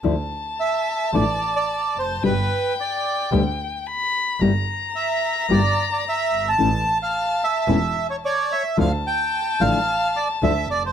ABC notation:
X:1
M:4/4
L:1/16
Q:1/4=110
K:Dm
V:1 name="Violin"
a16 | g12 =b4 | b16 | a12- a2 z2 |
a16 |]
V:2 name="Bandoneon"
z4 e4 d3 d3 c2 | =B4 d4 z8 | z4 e4 d3 d e3 a- | a3 f3 e4- e ^c [cd]2 e2 |
f2 g4 f4 d2 e2 d c |]
V:3 name="Nylon-string guitar"
[D,F,A,DE]2 z6 [D,F,A,DE]2 z6 | [=B,,D,G,=B,G]2 z6 [B,,D,G,B,G]2 z6 | [G,B,EG]2 z6 [G,B,EG]2 z6 | [E,A,^CE]2 z6 [E,A,CE]2 z6 |
[D,F,A,DE]2 z4 [D,F,A,DE]2 z4 [D,F,A,DE]2 z2 |]
V:4 name="Double bass" clef=bass
D,,2 z6 A,,,2 z4 F,,,2 | G,,,2 z6 D,,2 z6 | G,,,2 z6 G,,,2 z4 G,,,2 | A,,,2 z6 E,,,2 z6 |
D,,2 z4 A,,,2 z4 D,,2 F,,,2 |]